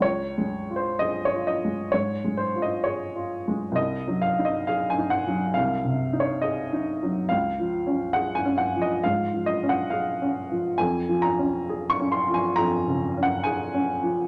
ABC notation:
X:1
M:4/4
L:1/16
Q:1/4=68
K:Db
V:1 name="Upright piano"
d3 c e d e2 d2 c e d4 | e2 f e f a g2 f3 d e4 | f4 g a g e f2 e g f4 | a2 b3 d' c' a b3 g a4 |]
V:2 name="Upright piano"
(3D,,2 A,2 F2 (3A2 F2 A,2 (3A,,2 A,2 F2 (3A2 F2 A,2 | (3C,,2 G,2 E2 (3A2 E2 G,2 (3C,,2 C,2 E2 (3A2 E2 G,2 | (3D,,2 F,2 D2 (3A2 D2 F,2 (3A,,2 F,2 D2 (3A2 D2 F,2 | (3F,,2 F,2 D2 (3A2 D2 F,2 (3F,,2 D,2 D2 (3A2 D2 F,2 |]